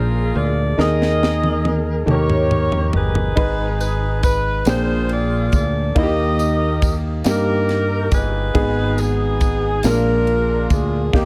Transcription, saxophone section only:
Already playing: F4 G#4 A#4
0.37 D5
0.80 G#4 A#4 D#5
2.09 G4 A#4 C#5
2.95 D#4 G#4 B4
3.81 B4
4.24 B4
4.67 F4 G#4 C5
5.11 D5
5.55 D5
5.98 G4 A#4 D#5
7.27 D#4 G4 A#4
8.14 D#4 G#4 B4
8.99 B3 D#4 G#4
9.86 D4 F4 A#4
10.72 G#4
11.16 A#3 D#4 G4

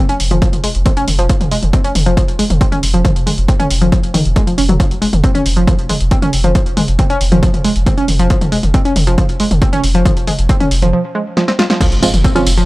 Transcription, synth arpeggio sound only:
0.09 C#4
0.31 F3
0.42 F3
0.64 G#3
0.86 C4
0.97 C#4
1.19 F3
1.30 F3
1.51 G#3
1.73 C4
1.84 C#4
2.06 F3
2.17 F3
2.39 G#3
2.61 C4
2.72 C#4
2.94 F3
3.05 F3
3.27 G#3
3.48 C4
3.60 C#4
3.81 F3
3.92 F3
4.14 D#3
4.36 G#3
4.47 F3
4.58 C#4
4.69 F#3
4.80 F3
5.02 G#3
5.24 C4
5.35 C#4
5.57 F3
5.67 F3
5.89 G#3
6.11 C4
6.22 C#4
6.44 F3
6.55 F3
6.77 G#3
6.99 C4
7.10 C#4
7.32 F3
7.43 F3
7.64 G#3
7.86 C4
7.98 C#4
8.19 F3
8.30 F3
8.52 G#3
8.74 C4
8.85 C#4
9.07 F3
9.18 F3
9.40 G#3
9.62 C4
9.73 C#4
9.95 F3
10.05 F3
10.27 G#3
10.49 C4
10.60 C#4
10.82 F3
10.93 F3
11.15 G#3
11.37 F3
11.48 C4
11.59 F4
11.70 F3
11.81 F3
12.03 G#3
12.24 C4
12.36 C#4
12.58 F3

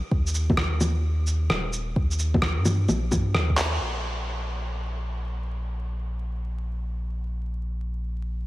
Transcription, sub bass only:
0.11 D#2
1.50 D#1
1.96 D#2
2.57 G2
2.89 A#1
3.12 G2
3.35 D#2
3.81 A#1

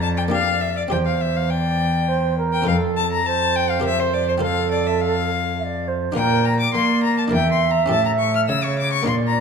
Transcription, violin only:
0.02 A5
0.17 G5
0.31 F5
0.61 E5
0.77 D5
0.91 G5
1.06 F5
1.21 E5
1.36 F5
1.50 G5
2.53 G5
2.68 F5
2.97 A5
3.12 A#5
3.26 A5
3.56 G5
3.70 F5
3.85 E5
4.00 C5
4.14 D5
4.29 C5
4.43 F5
4.72 D5
4.86 E5
5.01 F5
6.16 G5
6.45 A#5
6.60 D6
6.74 C6
7.04 A#5
7.18 A5
7.33 G5
7.52 C6
7.71 A#5
7.89 A5
8.05 A#5
8.19 C#6
8.35 F6
8.48 E6
8.63 C#6
8.79 D6
8.93 C#6
9.07 C6
9.27 A#5

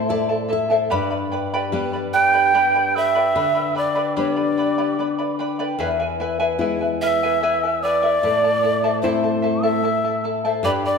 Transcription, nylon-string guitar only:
Already playing: A2
0.10 D5
0.53 E5
0.92 G2
1.72 G3 B3 D4
3.36 D3
4.17 G3 B3 D4
5.79 E2
6.58 G#3 B3 E4
8.23 A2
9.03 A3 C4 E4
10.63 G2

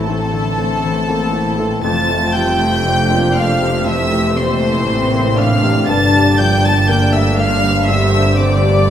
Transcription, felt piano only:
Already playing: E3 G3 A3 A#3 C4
0.09 E3
0.34 D3
0.59 A3
0.85 C4
1.10 A#3
1.35 C4
1.59 E3
1.84 F2
2.11 A3
2.34 G3
2.60 A3
2.86 C4
3.11 A#3
3.36 C4
3.61 C3
3.86 A3
4.12 C3
4.35 A#2
4.62 A3
4.87 C4
5.13 A#3
5.38 C4
5.63 C3
5.88 G2
6.14 G3
6.38 F3
6.63 G3
6.89 A#3
7.13 A3
7.38 A#3
7.64 D3
7.89 G3
8.15 D3
8.39 C3
8.67 G3

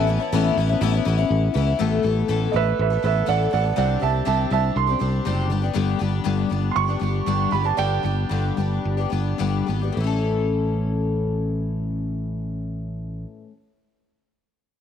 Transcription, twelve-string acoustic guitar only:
0.07 E3 B3 C#4 E4
0.19 B3 C#4 E4
0.33 A2 E3 B3 C#4 E4
0.57 E3 B3 C#4 E4
0.69 B3 C#4 E4
0.81 A2 E3 B3 C#4 E4
0.93 B3 C#4 E4
1.05 E3 B3 C#4 E4
1.17 B3 C#4 E4
1.54 E3 B3 C#4 E4
1.79 A2 E3 A3 B3 A4
2.03 E3 A3 B3 A4
2.28 A2 E3 A3 B3 A4
2.53 E3 A3 B3 A4
2.90 A3 B3 A4
3.03 E3 A3 B3 A4
3.26 A2 E3 A3 B3 A4
3.51 E3 A3 B3 A4
3.63 A3 B3 A4
3.76 C3 G3 C4 D4 G4
4.00 G3 C4 D4 G4
4.25 C3 G3 C4 D4 G4
4.50 G3 C4 D4 G4
4.87 C4 D4 G4
4.99 G3 C4 D4 G4
5.25 C3 G3 C4 D4 G4
5.50 G3 B3 D4 G4
5.62 G3 B3 D4 G4
5.73 G2 D3 G3 B3 D4 G4
5.99 G3 B3 D4 G4
6.24 G2 D3 G3 B3 D4 G4
6.50 G3 B3 D4 G4
6.88 G3 B3 D4 G4
6.99 G3 B3 D4 G4
7.26 G2 D3 G3 B3 D4 G4
7.51 G3 B3 D4 G4
7.63 G3 B3 D4 G4
7.77 G2 D3 G3 B3 D4 G4
8.03 G3 B3 D4 G4
8.29 G2 D3 G3 B3 D4 G4
8.57 G3 B3 D4 G4
8.97 G3 B3 D4 G4
9.10 G3 B3 D4 G4
9.38 G2 D3 G3 B3 D4 G4
9.66 G3 B3 D4 G4
9.81 G3 B3 D4 G4
9.92 A2
9.97 E3 A3
10.04 C#4 A4

